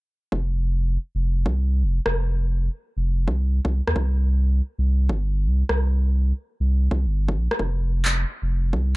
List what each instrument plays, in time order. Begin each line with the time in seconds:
0.32 sub bass F1, kick
1.15 sub bass F1
1.46 sub bass C2, kick
1.83 sub bass F1
2.06 sub bass F1, cross-stick
2.97 sub bass F1
3.28 sub bass C2, kick
3.65 sub bass C2, kick
3.88 sub bass D#2, cross-stick
3.96 sub bass C2, kick
4.79 sub bass C2
5.09 sub bass G1, kick
5.47 sub bass C2
5.69 sub bass C2, cross-stick
6.60 sub bass C2
6.91 sub bass C2, kick
7.06 sub bass G1
7.28 kick
7.37 sub bass A#1
7.51 cross-stick
7.59 sub bass F1, kick
8.05 clap
8.42 sub bass F1
8.73 sub bass C2, kick